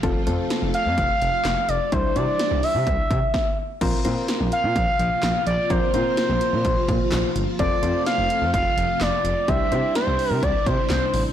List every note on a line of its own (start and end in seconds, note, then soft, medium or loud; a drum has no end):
0.00 0.13 F1 loud
0.00 3.30 C3 medium
0.00 1.88 F3 medium
0.00 1.90 A3 medium
0.00 0.22 C4 medium
0.00 1.90 F4 medium
0.00 0.22 F4 medium
0.00 0.22 A4 loud
0.00 kick loud
0.00 closed hi-hat medium
0.27 0.36 F2 loud
0.27 1.02 C4 medium
0.27 1.02 F4 medium
0.27 1.02 A4 loud
0.27 closed hi-hat medium
0.50 snare loud
0.50 closed hi-hat medium
0.62 0.72 F1 medium
0.74 1.70 F5 loud
0.74 closed hi-hat medium
0.86 0.95 F2 loud
0.98 1.07 F1 loud
0.98 kick loud
0.98 closed hi-hat medium
1.21 1.31 F1 loud
1.21 closed hi-hat medium
1.45 1.54 F1 loud
1.45 snare loud
1.45 clap loud
1.45 closed hi-hat medium
1.68 1.78 F1 medium
1.68 1.94 D5 loud
1.68 closed hi-hat medium
1.92 2.02 C2 loud
1.92 3.33 E3 medium
1.92 3.33 G3 medium
1.92 3.33 D4 medium
1.92 2.11 D4 medium
1.92 2.11 E4 medium
1.92 2.11 C5 medium
1.92 2.17 C5 medium
1.92 kick loud
1.92 closed hi-hat medium
2.16 2.25 C3 loud
2.16 2.91 D4 medium
2.16 2.91 E4 medium
2.16 2.91 C5 medium
2.16 2.65 D5 loud
2.16 closed hi-hat medium
2.39 snare loud
2.39 closed hi-hat medium
2.51 2.61 C2 loud
2.63 3.58 E5 loud
2.63 open hi-hat soft
2.75 2.84 C3 loud
2.87 2.96 C2 loud
2.87 kick loud
2.87 closed hi-hat medium
3.11 3.20 C3 loud
3.11 kick loud
3.11 closed hi-hat medium
3.34 kick loud
3.34 snare medium
3.81 3.91 A#1 loud
3.81 7.56 C3 medium
3.81 9.44 F3 medium
3.81 7.55 A#3 medium
3.81 4.00 C4 medium
3.81 4.00 F4 medium
3.81 9.44 F4 medium
3.81 4.00 A#4 medium
3.81 4.00 C5 loud
3.81 kick loud
3.81 closed hi-hat medium
3.81 crash loud
4.05 4.14 A#2 loud
4.05 4.80 C4 medium
4.05 4.80 F4 medium
4.05 4.80 A#4 medium
4.05 4.80 C5 loud
4.05 closed hi-hat medium
4.28 snare loud
4.28 closed hi-hat medium
4.40 4.50 A#1 medium
4.52 5.43 F5 loud
4.52 closed hi-hat medium
4.64 4.73 A#2 loud
4.76 4.85 A#1 loud
4.76 kick loud
4.76 closed hi-hat medium
4.99 5.09 A#1 loud
4.99 closed hi-hat medium
5.23 5.32 A#1 loud
5.23 snare loud
5.23 clap loud
5.23 closed hi-hat medium
5.47 5.56 A#1 loud
5.47 5.72 D5 loud
5.47 closed hi-hat medium
5.70 5.80 A#1 loud
5.70 5.89 C4 medium
5.70 5.89 F4 medium
5.70 5.89 A#4 medium
5.70 5.93 C5 medium
5.70 5.89 D5 medium
5.70 kick loud
5.70 closed hi-hat medium
5.94 6.03 A#2 loud
5.94 6.69 C4 medium
5.94 6.69 F4 medium
5.94 6.69 A#4 medium
5.94 7.32 C5 loud
5.94 6.69 C5 medium
5.94 closed hi-hat medium
6.17 snare loud
6.17 closed hi-hat medium
6.29 6.39 A#1 loud
6.41 closed hi-hat medium
6.53 6.62 A#2 loud
6.65 6.74 A#1 loud
6.65 kick loud
6.65 closed hi-hat medium
6.88 6.98 A#2 loud
6.88 kick loud
6.88 closed hi-hat medium
7.12 7.21 A#1 loud
7.12 snare loud
7.12 clap loud
7.12 closed hi-hat medium
7.35 7.45 G1 loud
7.35 closed hi-hat medium
7.59 7.69 F1 loud
7.59 11.33 C3 medium
7.59 9.46 A3 medium
7.59 7.78 C4 medium
7.59 7.78 F4 medium
7.59 7.78 A4 medium
7.59 7.78 C5 medium
7.59 8.03 D5 loud
7.59 kick loud
7.59 closed hi-hat medium
7.83 7.92 F2 loud
7.83 8.58 C4 medium
7.83 8.58 F4 medium
7.83 8.58 A4 medium
7.83 8.58 C5 medium
7.83 closed hi-hat medium
8.06 8.50 F5 loud
8.06 snare loud
8.06 closed hi-hat medium
8.18 8.28 F1 medium
8.30 closed hi-hat medium
8.42 8.51 F2 loud
8.54 8.63 F1 loud
8.54 9.03 F5 loud
8.54 kick loud
8.54 closed hi-hat medium
8.77 8.87 F1 loud
8.77 closed hi-hat medium
9.01 9.10 F1 loud
9.01 9.50 D5 loud
9.01 snare loud
9.01 clap loud
9.01 closed hi-hat medium
9.24 9.34 F1 loud
9.24 closed hi-hat medium
9.48 9.58 C2 loud
9.48 11.33 G3 medium
9.48 11.33 D4 medium
9.48 9.67 D4 medium
9.48 9.67 E4 medium
9.48 11.33 E4 loud
9.48 9.67 G4 medium
9.48 9.67 C5 medium
9.48 9.95 E5 loud
9.48 kick loud
9.48 closed hi-hat medium
9.72 9.81 C3 loud
9.72 10.47 D4 medium
9.72 10.47 E4 medium
9.72 10.47 G4 medium
9.72 10.47 C5 medium
9.72 closed hi-hat medium
9.95 10.32 C5 medium
9.95 snare loud
9.95 closed hi-hat medium
10.07 10.17 C2 loud
10.19 open hi-hat soft
10.31 10.40 C3 loud
10.31 10.45 A#4 medium
10.43 10.52 C2 loud
10.43 10.68 D5 loud
10.43 kick loud
10.43 closed hi-hat medium
10.66 10.76 C3 loud
10.66 10.90 C5 medium
10.66 kick loud
10.66 closed hi-hat medium
10.90 10.99 C2 loud
10.90 11.23 C5 medium
10.90 snare loud
10.90 clap loud
10.90 closed hi-hat medium
11.13 11.23 A1 medium
11.13 open hi-hat medium